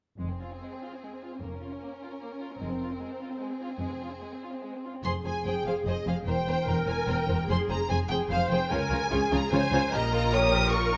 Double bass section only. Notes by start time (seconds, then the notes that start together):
0.19 F1
1.42 F1
2.61 F1
3.79 F1
5.04 F1
5.24 F1
5.45 F1
5.65 F1
5.86 F1
6.06 F1
6.26 E1
6.46 E1
6.67 E1
6.87 E1
7.07 E1
7.28 E1
7.49 F1
7.69 F1
7.89 F1
8.10 F1
8.30 F1
8.51 F1
8.71 C#2
8.91 C#2
9.11 C#2
9.31 C#2
9.51 C#2
9.71 C#2
9.91 A#1